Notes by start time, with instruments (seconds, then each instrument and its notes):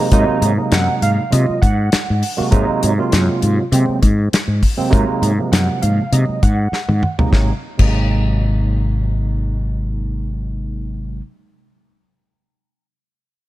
0.11 fretless electric bass G#2, tine electric piano C3 F#3 G#3 A#3 D#4, kick, closed hi-hat
0.29 muted fretless electric bass stroke
0.42 fretless electric bass G#2, closed hi-hat
0.57 tine electric piano C3 F#3 G#3 A#3 D#4
0.72 fretless electric bass F#2, tine electric piano F#5, snare, closed hi-hat
1.02 fretless electric bass G#2, tine electric piano F5, closed hi-hat
1.30 tine electric piano C3 F#3 G#3 A#3 F4 D#5, fretless electric bass C3, closed hi-hat
1.50 muted fretless electric bass stroke
1.61 fretless electric bass G#2, tine electric piano A#3 D#4 F#5, kick, closed hi-hat
1.92 muted fretless electric bass stroke, snare, closed hi-hat
2.10 fretless electric bass G#2
2.23 open hi-hat
2.37 tine electric piano C3 F#3 G#3 A#3 F#4, muted fretless electric bass stroke
2.51 fretless electric bass G#2, tine electric piano C3 F#3 G#3 A#3 D#4, kick, closed hi-hat
2.69 muted fretless electric bass stroke
2.83 fretless electric bass G#2, closed hi-hat
2.98 tine electric piano C3 F#3 G#3 A#3 F4
3.12 fretless electric bass F#2, snare, closed hi-hat
3.42 fretless electric bass G#2, closed hi-hat
3.72 fretless electric bass C3, tine electric piano C3 F#3 G#3 A#3 C4, closed hi-hat
3.89 muted fretless electric bass stroke
4.02 fretless electric bass G#2, tine electric piano F#4, kick, closed hi-hat
4.33 muted fretless electric bass stroke, snare, closed hi-hat
4.48 fretless electric bass G#2
4.63 kick, open hi-hat
4.77 tine electric piano C3 F#3 G#3 A#3 C4, muted fretless electric bass stroke
4.90 fretless electric bass G#2, tine electric piano C3 F#3 G#3 A#3 D#4, kick, closed hi-hat
5.09 muted fretless electric bass stroke
5.22 fretless electric bass G#2, closed hi-hat
5.38 tine electric piano C3 F3 F#3 G#3 A#3
5.52 fretless electric bass F#2, tine electric piano F#5, snare, closed hi-hat
5.82 fretless electric bass G#2, tine electric piano F5, closed hi-hat
6.12 fretless electric bass C3, tine electric piano C3 F#3 G#3 A#3 D#4 D#5, closed hi-hat
6.29 muted fretless electric bass stroke
6.42 fretless electric bass G#2, tine electric piano A#3 C4 F#5, kick, closed hi-hat
6.72 muted fretless electric bass stroke, snare
6.88 fretless electric bass G#2, high tom
7.03 mid tom
7.18 tine electric piano C3 F#3 G#3 A#3 D#4, muted fretless electric bass stroke, floor tom
7.31 fretless electric bass G#1, tine electric piano C3 F#3 G#3 A#3, kick, snare
7.36 tine electric piano D#4
7.78 fretless electric bass G#1, tine electric piano C3 F#3 G#3 A#3 D#4, kick, crash